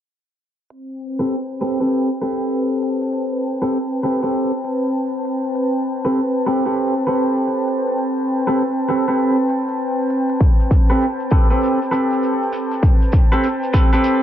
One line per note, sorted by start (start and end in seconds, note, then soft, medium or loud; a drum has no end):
0.70 14.23 C4 medium
0.70 closed hi-hat medium
0.94 14.23 G5 medium
1.04 14.23 B4 medium
1.19 1.34 C4 medium
1.19 1.34 G4 medium
1.19 1.34 A4 medium
1.19 1.34 B4 medium
1.19 closed hi-hat soft
1.31 closed hi-hat medium
1.61 1.78 C4 medium
1.61 1.78 G4 medium
1.61 1.78 A4 medium
1.61 1.78 B4 loud
1.61 closed hi-hat soft
1.80 2.09 C4 medium
1.80 2.09 G4 medium
1.80 2.09 A4 medium
1.80 2.09 B4 medium
1.80 closed hi-hat soft
1.91 closed hi-hat medium
2.21 3.58 C4 medium
2.21 3.58 G4 medium
2.21 3.58 A4 medium
2.21 3.58 B4 medium
2.21 closed hi-hat medium
2.35 14.23 A5 medium
2.41 closed hi-hat soft
2.82 closed hi-hat medium
3.01 closed hi-hat soft
3.13 closed hi-hat medium
3.62 3.77 C4 medium
3.62 3.77 G4 medium
3.62 3.77 A4 medium
3.62 3.77 B4 medium
3.62 closed hi-hat soft
3.74 closed hi-hat medium
4.03 4.20 C4 medium
4.03 4.20 G4 medium
4.03 4.20 A4 medium
4.03 4.20 B4 medium
4.03 closed hi-hat soft
4.23 4.51 C4 medium
4.23 4.51 G4 medium
4.23 4.51 A4 medium
4.23 4.51 B4 medium
4.23 closed hi-hat soft
4.34 closed hi-hat medium
4.65 closed hi-hat medium
4.84 closed hi-hat soft
5.25 closed hi-hat medium
5.44 closed hi-hat soft
5.55 closed hi-hat medium
6.05 6.19 C4 medium
6.05 6.20 G4 medium
6.05 6.19 A4 medium
6.05 6.20 B4 medium
6.05 closed hi-hat soft
6.16 closed hi-hat medium
6.46 6.63 C4 medium
6.46 6.63 G4 medium
6.46 6.63 A4 medium
6.46 6.63 B4 medium
6.46 closed hi-hat soft
6.65 6.94 C4 medium
6.65 6.94 G4 medium
6.65 6.94 A4 medium
6.65 6.94 B4 medium
6.65 closed hi-hat soft
6.77 closed hi-hat medium
7.07 8.43 C4 medium
7.07 8.43 G4 medium
7.07 8.43 A4 medium
7.07 8.43 B4 medium
7.07 closed hi-hat medium
7.26 closed hi-hat soft
7.68 closed hi-hat medium
7.87 closed hi-hat soft
7.98 closed hi-hat medium
8.29 closed hi-hat soft
8.47 8.62 C4 medium
8.47 8.62 G4 medium
8.47 8.62 A4 medium
8.47 8.62 B4 medium
8.47 closed hi-hat soft
8.59 closed hi-hat medium
8.89 9.05 C4 medium
8.89 9.05 G4 medium
8.89 9.05 A4 medium
8.89 9.05 B4 medium
8.89 closed hi-hat soft
9.08 9.36 C4 medium
9.08 9.36 G4 medium
9.08 9.36 A4 medium
9.08 9.36 B4 medium
9.08 closed hi-hat soft
9.20 closed hi-hat medium
9.50 closed hi-hat medium
9.69 closed hi-hat soft
10.10 closed hi-hat medium
10.29 closed hi-hat soft
10.40 kick loud
10.40 closed hi-hat medium
10.40 shekere soft
10.59 shekere soft
10.71 kick medium
10.71 shekere medium
10.90 11.04 C4 medium
10.90 11.05 G4 medium
10.90 11.04 A4 medium
10.90 11.04 B4 medium
10.90 closed hi-hat soft
10.90 shekere soft
11.01 closed hi-hat medium
11.01 shekere soft
11.20 shekere soft
11.31 11.48 C4 medium
11.31 11.48 G4 medium
11.31 11.48 A4 medium
11.31 11.48 B4 loud
11.31 kick loud
11.31 closed hi-hat soft
11.31 shekere medium
11.50 11.78 C4 medium
11.50 11.79 G4 medium
11.50 11.78 A4 medium
11.50 11.79 B4 medium
11.50 closed hi-hat soft
11.50 shekere soft
11.62 closed hi-hat medium
11.62 shekere soft
11.82 shekere soft
11.91 13.28 C4 medium
11.91 13.28 G4 medium
11.91 13.28 A4 medium
11.91 13.28 B4 medium
11.91 closed hi-hat medium
11.91 shekere medium
12.11 closed hi-hat soft
12.11 shekere soft
12.23 shekere soft
12.42 shekere soft
12.53 closed hi-hat medium
12.53 shekere medium
12.71 closed hi-hat soft
12.71 shekere soft
12.83 kick loud
12.83 closed hi-hat medium
12.83 shekere soft
13.02 shekere soft
13.12 kick medium
13.12 shekere medium
13.32 13.47 C4 medium
13.32 13.47 G4 medium
13.32 13.47 A4 medium
13.32 13.47 B4 medium
13.32 closed hi-hat soft
13.32 shekere soft
13.44 closed hi-hat medium
13.44 shekere soft
13.63 shekere soft
13.73 13.90 C4 medium
13.73 13.90 G4 medium
13.73 13.90 A4 medium
13.73 13.90 B4 medium
13.73 kick medium
13.73 closed hi-hat soft
13.73 shekere medium
13.93 14.21 C4 medium
13.93 14.21 G4 medium
13.93 14.21 A4 medium
13.93 14.21 B4 medium
13.93 closed hi-hat soft
13.93 shekere soft
14.04 closed hi-hat medium
14.04 shekere medium